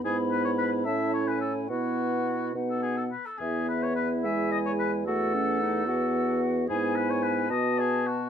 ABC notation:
X:1
M:6/8
L:1/16
Q:3/8=73
K:E
V:1 name="Flute"
b6 a3 g3 | f6 f4 z2 | e6 g6 | f6 f6 |
g6 a6 |]
V:2 name="Oboe"
G2 B c B2 e2 c B A2 | F6 z A G A B A | G2 B c B2 e2 d c B2 | A8- A2 z2 |
G2 B c B2 d2 G2 F2 |]
V:3 name="Clarinet"
E6 E6 | E6 D4 z2 | E12 | F2 C2 D2 F6 |
E6 F6 |]
V:4 name="French horn"
B,6 C6 | B,6 B,4 z2 | B,6 G,6 | A,6 B,6 |
B,6 B,6 |]
V:5 name="Bassoon" clef=bass
G,,6 A,,6 | B,,6 B,,4 z2 | E,,12- | E,,12 |
G,,6 B,,6 |]